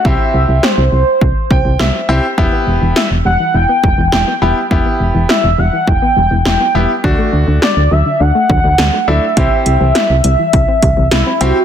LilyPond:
<<
  \new Staff \with { instrumentName = "Soft synth lead" } { \time 4/4 \key e \minor \tempo 4 = 103 e''4 c''2~ c''8 r8 | r4 e''8 fis''8 g''4 g''4 | r4 e''8 fis''8 g''4 g''4 | r4 d''8 e''8 fis''4. e''8~ |
e''2. e'8 fis'8 | }
  \new Staff \with { instrumentName = "Grand piano" } { \time 4/4 \key e \minor << { r2 r8 g''8 e''4 | r1 | r1 | r1 |
r1 | } \\ { <c' e' g'>4 r2 r8 <c' e' g'>16 r16 | <b e' g'>4 r2 r8 <b e' g'>16 r16 | <b e' g'>4 r2 r8 <b e' g'>16 r16 | <a d' fis'>4 r2 r8 <a d' e'>16 r16 |
<c' e' g'>4 r2 r8 <c' e' g'>16 r16 | } >> }
  \new Staff \with { instrumentName = "Synth arpeggio sound" } { \time 4/4 \key e \minor r1 | e'16 b16 r16 e16 e'16 r16 g16 e16 e'16 b16 g16 e16 e'16 b16 g16 r16 | e'16 b16 r16 e16 e'16 r16 g16 e16 e'16 b16 g16 e16 e'16 b16 g16 r16 | d'16 a16 r16 d16 d'16 r16 fis16 d16 d'16 a16 fis16 d16 d'16 a16 fis16 r16 |
e'16 c'16 r16 e16 e'16 r16 g16 e16 e'16 c'16 g16 e16 e'16 c'16 g16 r16 | }
  \new Staff \with { instrumentName = "FM bass" } { \clef bass \time 4/4 \key e \minor c,16 r16 c,16 c,16 r16 c,16 c,16 r16 c,16 r16 c,16 c,16 c,16 r16 c,16 r16 | e,,16 r16 e,,16 e,,16 r16 e,,16 e,,16 r16 e,,16 r16 e,,16 e,,16 e,,16 r16 e,,16 r16 | e,,16 r16 e,,16 e,,16 r16 e,,16 e,,16 r16 e,,16 r16 e,,16 e,,16 e,,16 r16 e,,16 r16 | d,16 r16 d,16 d,16 r16 d,16 d,16 r16 d,16 r16 d,16 d,16 d,16 r16 d,16 r16 |
c,16 r16 c,16 c,16 r16 c,16 c,16 r16 c,16 r16 c,16 c,16 c,16 r16 c,16 r16 | }
  \new DrumStaff \with { instrumentName = "Drums" } \drummode { \time 4/4 bd4 sn4 bd8 bd8 sn4 | bd4 sn4 r8 bd8 sn4 | bd4 sn4 bd4 sn4 | bd4 sn4 r8 bd8 sn4 |
<hh bd>8 hh8 <hh sn>8 hh8 <hh bd>8 <hh bd>8 <hh sn>8 hh8 | }
>>